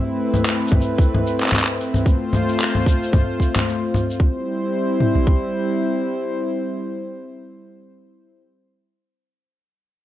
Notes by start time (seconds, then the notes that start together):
Already playing: A3 C4 E4 B4
0.34 low conga, shaker
0.46 clap, shaker
0.67 shaker
0.72 kick, low conga
0.81 shaker
0.98 kick, shaker
1.14 low conga
1.27 shaker
1.41 clap
1.43 clap
1.46 clap
1.49 clap
1.52 clap, low conga, shaker
1.56 clap
1.60 clap
1.64 clap
1.80 shaker
1.94 low conga, shaker
2.06 A3 F4 C5, kick, shaker
2.33 low conga, shaker
2.49 shaker
2.60 clap, shaker
2.75 low conga
2.86 kick, shaker
3.03 shaker
3.13 kick, low conga, shaker
3.40 kick, shaker
3.56 clap, low conga, shaker
3.69 shaker
3.94 low conga, shaker
4.10 shaker
4.20 G3 C4 E4 C5, kick
5.00 mid tom
5.15 floor tom
5.27 kick